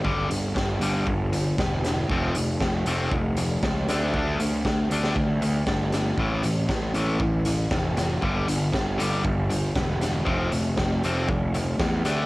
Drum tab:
HH |--x---x---x---x-|--x---x---x---x-|--x---x---x---x-|--x---x---x---x-|
SD |----o-------o-o-|----o-------o-o-|----o--o----o-o-|----o-------o-o-|
BD |o---o---o---o---|o---o---o---o---|o---o---o---o---|o---o---o---o---|

HH |--x---x---x---x-|--x---x---x---x-|
SD |----o-------o-o-|----o-------o-o-|
BD |o---o---o---o---|o---o---o---o---|